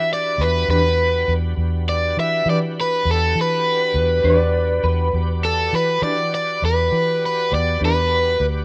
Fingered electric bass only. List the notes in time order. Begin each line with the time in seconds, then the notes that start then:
Already playing: E3
0.38 E2
0.68 E2
1.28 E2
1.57 E2
2.17 E3
2.46 E3
3.05 E2
3.36 E3
3.94 E2
4.24 E2
4.83 E2
5.13 E2
5.73 E3
6.02 E3
6.62 E2
6.92 E3
7.52 E2
7.81 E2
8.40 D2